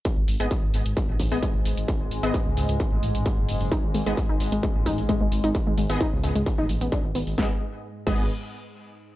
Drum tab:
CC |----------------|----------------|----------------|----------------|
HH |x-oxx-oxx-oox-ox|x-oxx-oxx-oxx-oo|x-oxx-oxx-oox-ox|x-oxx-oxx-oxx-oo|
SD |----------------|----------------|----------------|----------------|
BD |o---o---o-o-o---|o---o---o---o---|o---o---o-o-o---|o---o---o---o---|

CC |------x---------|
HH |----------------|
SD |o---------------|
BD |o-----o---------|